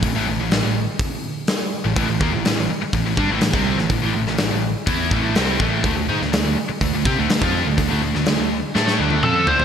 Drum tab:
HH |o---o---o---o---|o---o---o---o---|o---o---o---o---|o---o---o---o---|
SD |----o-------o---|----o-------o--o|---oo-------o---|---oo-------o---|
T1 |----------------|----------------|----------------|----------------|
T2 |----------------|----------------|----------------|----------------|
FT |----------------|----------------|----------------|----------------|
BD |o-------o-------|o-o-----o-o--o--|o-------o-o---o-|o-------o-o--o--|

HH |o---o-----------|
SD |---oo---oo------|
T1 |-----------o----|
T2 |------------o---|
FT |--------------oo|
BD |o---------------|